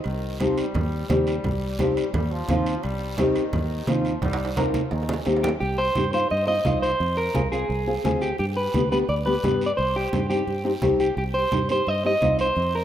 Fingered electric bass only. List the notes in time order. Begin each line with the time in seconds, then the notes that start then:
0.05 C2
0.75 D#2
1.10 D#2
1.45 C2
2.14 D#2
2.49 D#2
2.85 C2
3.53 D#2
3.88 D#2
4.22 C2
4.92 D#2
5.27 D#2
5.61 C2
5.96 G2
6.31 G2
6.65 C2
7.00 F2
7.35 C2
7.69 C2
8.04 D2
8.39 G2
8.74 D2
9.09 D2
9.44 G2
9.78 C2
10.13 G2
10.47 G2
10.82 C2
11.17 C2
11.52 G2
11.87 G2
12.22 C2
12.56 F2